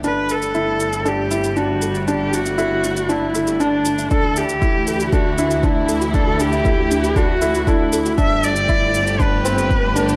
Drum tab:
SH |x-xxx-xxx-xxx-xx|x-xxx-xxx-xxx-xx|x-xxx-xxx-xxx-xx|x-xxx-xxx-xxx-xx|
BD |----------------|----------------|o---o---o---o---|o---o---o---o---|

SH |x-xxx-xxx-xxx-xx|
BD |o---o---o---o---|